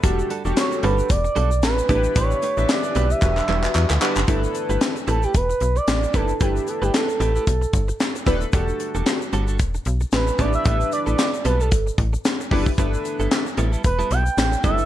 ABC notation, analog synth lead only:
X:1
M:4/4
L:1/16
Q:"Swing 16ths" 1/4=113
K:G
V:1 name="Analog synth lead"
z4 ^c2 B2 d4 B4 | ^c4 d3 e6 z3 | z6 A G B3 d3 A2 | G2 A G A8- A2 z2 |
z12 B2 d e | e2 d d3 B A2 z6 z | z8 B2 g4 e2 |]